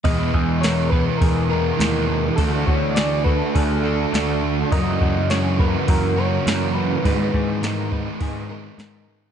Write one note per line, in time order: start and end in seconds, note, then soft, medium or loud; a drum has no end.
0.04 0.92 E2 medium
0.04 0.61 E2 medium
0.04 0.29 E2 medium
0.04 0.92 B2 medium
0.04 0.35 B2 loud
0.04 0.60 E3 medium
0.04 0.32 E3 loud
0.04 0.61 G#3 medium
0.04 0.62 B3 medium
0.04 0.63 G#4 medium
0.04 0.34 B4 medium
0.04 0.62 D#5 loud
0.04 kick loud
0.04 open hi-hat soft
0.34 1.08 E2 loud
0.34 0.63 B2 medium
0.34 0.63 E3 medium
0.34 0.62 G#4 medium
0.34 kick medium
0.61 1.79 E2 medium
0.61 1.52 B2 medium
0.61 0.93 E3 medium
0.61 1.49 E3 medium
0.61 0.93 G#3 medium
0.61 0.91 B3 medium
0.61 0.90 G#4 medium
0.61 0.91 A#4 medium
0.61 0.91 C#5 loud
0.61 snare loud
0.61 open hi-hat medium
0.90 1.50 B3 medium
0.90 1.48 G#4 medium
0.90 1.19 B4 medium
0.90 1.20 B4 medium
0.90 kick medium
0.94 1.51 E3 medium
0.94 1.50 G#3 medium
1.17 1.70 E2 loud
1.17 1.49 G#4 medium
1.17 2.38 A#4 loud
1.22 kick loud
1.22 open hi-hat medium
1.49 1.80 B2 medium
1.49 1.82 E3 medium
1.49 1.76 E3 medium
1.49 1.77 G#3 medium
1.49 1.78 B3 medium
1.49 1.79 G#4 medium
1.49 1.78 A#4 medium
1.77 2.29 D#2 medium
1.77 2.37 E2 medium
1.77 2.35 E3 medium
1.77 2.36 G#3 medium
1.77 2.36 B3 medium
1.77 2.37 G#4 medium
1.77 2.38 A#4 medium
1.77 open hi-hat medium
1.81 2.10 B2 medium
1.81 2.08 E3 medium
1.81 snare loud
2.09 2.37 B2 medium
2.09 2.36 E3 medium
2.36 2.63 D2 medium
2.36 2.94 D3 medium
2.36 2.96 D3 medium
2.36 2.95 A3 medium
2.36 2.69 A3 medium
2.36 2.96 D4 medium
2.36 2.98 F#4 medium
2.36 2.68 A4 medium
2.36 2.67 A4 medium
2.36 kick medium
2.36 open hi-hat medium
2.41 2.66 D4 medium
2.66 3.41 D2 medium
2.66 2.97 A3 medium
2.66 2.98 D4 medium
2.66 3.00 F#4 medium
2.66 2.96 C#5 medium
2.66 kick medium
2.95 3.54 D3 medium
2.95 4.12 D3 medium
2.95 3.26 A3 medium
2.95 3.85 A3 medium
2.95 3.25 D4 medium
2.95 3.24 F#4 medium
2.95 3.25 G#4 medium
2.95 3.26 D5 loud
2.95 snare loud
2.95 open hi-hat medium
3.00 3.83 D4 medium
3.24 3.85 A3 medium
3.24 3.84 D4 medium
3.24 3.83 F#4 medium
3.24 3.54 A4 medium
3.24 3.54 B4 medium
3.24 kick medium
3.54 4.04 D2 loud
3.54 3.83 G#4 medium
3.54 4.38 A4 medium
3.54 kick loud
3.54 open hi-hat medium
3.83 4.13 A3 medium
3.83 4.14 A3 medium
3.83 4.15 D4 medium
3.83 4.13 D4 medium
3.83 4.15 F#4 medium
3.83 4.12 A4 medium
4.13 4.62 D2 medium
4.13 4.70 D3 medium
4.13 4.70 A3 medium
4.13 4.43 A3 medium
4.13 4.70 D4 medium
4.13 4.41 D4 medium
4.13 4.74 F#4 medium
4.13 4.71 A4 medium
4.13 snare loud
4.13 open hi-hat medium
4.42 4.71 A3 medium
4.42 4.69 D4 medium
4.72 5.59 F#2 medium
4.72 5.30 F#2 loud
4.72 4.96 F#2 medium
4.72 5.59 C#3 loud
4.72 5.03 C#3 medium
4.72 5.28 E3 medium
4.72 5.01 F#3 loud
4.72 5.30 A#3 loud
4.72 5.31 C#4 loud
4.72 5.32 F#4 loud
4.72 5.01 A#4 medium
4.72 5.32 D#5 loud
4.72 kick medium
4.72 open hi-hat soft
5.01 5.74 F#2 medium
5.01 5.32 C#3 medium
5.01 5.34 F#3 medium
5.01 5.33 F#4 medium
5.01 kick medium
5.30 6.45 F#2 medium
5.30 6.19 C#3 medium
5.30 5.60 E3 medium
5.30 5.60 A#3 medium
5.30 5.59 C#4 medium
5.30 5.58 F#4 medium
5.30 5.59 G#4 medium
5.30 5.61 C#5 loud
5.30 snare loud
5.30 open hi-hat medium
5.34 6.17 F#3 medium
5.59 6.18 E3 medium
5.59 6.17 A#3 medium
5.59 6.16 C#4 medium
5.59 6.16 F#4 medium
5.59 5.88 A#4 medium
5.59 5.91 B4 medium
5.59 kick medium
5.88 6.37 F#2 loud
5.88 7.37 F#4 medium
5.88 6.20 A#4 loud
5.88 kick loud
5.88 open hi-hat medium
6.16 6.44 E3 medium
6.16 6.48 F#3 medium
6.16 6.45 A#3 medium
6.16 6.46 C#4 medium
6.16 6.47 F#4 medium
6.16 6.46 A#4 medium
6.16 6.76 C#5 loud
6.20 6.46 C#3 medium
6.46 7.02 F#2 medium
6.46 6.95 F#2 medium
6.46 6.77 C#3 medium
6.46 7.02 E3 medium
6.46 6.75 F#3 medium
6.46 7.03 A#3 medium
6.46 7.03 C#4 medium
6.46 7.06 F#4 medium
6.46 7.05 A#4 medium
6.46 snare loud
6.46 open hi-hat medium
6.74 7.04 C#3 medium
6.74 7.07 F#3 medium
6.74 8.78 B4 loud
7.04 7.91 G#2 medium
7.04 7.60 G#2 medium
7.04 7.29 G#2 medium
7.04 7.91 D#3 medium
7.04 7.35 D#3 loud
7.04 7.62 G#3 medium
7.04 7.32 G#3 loud
7.04 7.63 B3 medium
7.04 7.64 D#4 loud
7.04 7.64 G#4 medium
7.04 7.34 B4 loud
7.04 kick medium
7.04 open hi-hat medium
7.34 8.07 G#2 medium
7.34 7.61 D#3 medium
7.34 7.63 G#3 medium
7.34 7.62 G#4 medium
7.34 kick medium
7.61 8.77 G#2 medium
7.61 8.51 D#3 medium
7.61 7.93 G#3 medium
7.61 8.49 G#3 medium
7.61 7.92 B3 medium
7.61 7.92 D#4 medium
7.61 7.91 A#4 medium
7.61 snare loud
7.61 open hi-hat medium
7.65 7.91 G#4 medium
7.92 8.51 G#3 medium
7.92 8.50 B3 medium
7.92 8.49 D#4 medium
7.92 8.48 G#4 medium
7.92 8.21 B4 medium
7.92 kick medium
8.21 8.69 G#2 loud
8.21 8.49 G#4 medium
8.21 kick loud
8.21 open hi-hat medium
8.49 8.78 D#3 medium
8.49 8.80 G#3 medium
8.49 8.77 G#3 medium
8.49 8.78 B3 medium
8.49 8.78 D#4 medium
8.49 8.80 G#4 medium
8.49 8.77 A#4 medium
8.78 9.32 G#2 medium
8.78 9.27 G#2 loud
8.78 9.09 D#3 medium
8.78 9.32 G#3 medium
8.78 9.06 G#3 medium
8.78 9.32 B3 medium
8.78 9.32 D#4 medium
8.78 9.32 G#4 medium
8.78 9.32 A#4 medium
8.78 snare loud
8.78 open hi-hat medium
9.08 9.32 D#3 medium
9.08 9.32 G#3 medium